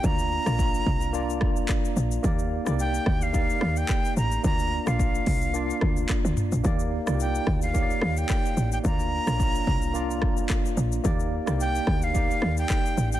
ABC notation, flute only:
X:1
M:4/4
L:1/16
Q:"Swing 16ths" 1/4=109
K:Bb
V:1 name="Flute"
b12 z4 | z4 g3 f4 g3 b2 | b3 f8- f3 z2 | z4 g3 f4 g4 g |
b12 z4 | z4 g3 f4 g4 g |]